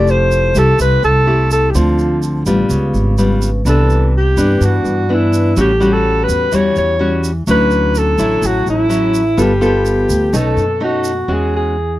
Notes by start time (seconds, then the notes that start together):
Already playing: F1 F3 A3 E4 G4 D5
0.08 C5, shaker
0.32 shaker
0.55 C2 A3 E4 G4 A4, shaker
0.79 C2 C3 B4, shaker
1.03 C2 A4, shaker
1.27 A3 E4 G4
1.51 A4, shaker
1.70 G4
1.75 D2 D3 F3 C4 F4, shaker
1.99 shaker
2.23 shaker
2.46 A1 G3 B3 F4, shaker
2.69 C#2 C#3, shaker
2.94 G#1, shaker
3.18 G3 B3 F4, shaker
3.42 shaker
3.65 C2 C3 E3 B3 D4 A4, shaker
3.90 shaker
4.18 G4
4.37 G2 E3 B3 D4, shaker
4.61 G2, shaker
4.65 F#4
4.84 G2, shaker
5.09 E3 B3 D4
5.13 E4
5.33 shaker
5.56 A1 A2 G3 C#4 F#4, shaker
5.61 G4
5.80 G3 C#4 F#4, shaker
5.93 A4
6.24 B4
6.29 E2, shaker
6.52 E2 E3 G3 C#4 F#4 C#5, shaker
6.76 E2 C#5, shaker
6.99 G3 C#4 F#4
7.24 shaker
7.47 D2 D3 F#3 C#4 E4 B4, shaker
7.71 shaker
7.95 A4, shaker
8.18 A1 F#3 C#4 E4, shaker
8.42 A1 A2, shaker
8.46 F#4
8.66 A1 E4, shaker
8.89 F#3 C#4 E4, shaker
9.14 shaker
9.37 G1 G3 B3 F4 A4, shaker
9.42 G4
9.61 B3 F4 A4, shaker
9.66 G4
9.86 shaker
10.09 D2, shaker
10.33 B1 B2 A3 C#4 D#4 A4, shaker
10.57 F#2, shaker
10.80 A3 C#4 D#4 F#4
11.04 shaker
11.28 E2 E3 G#3 C#4 F#4
11.33 G#4
11.56 G#4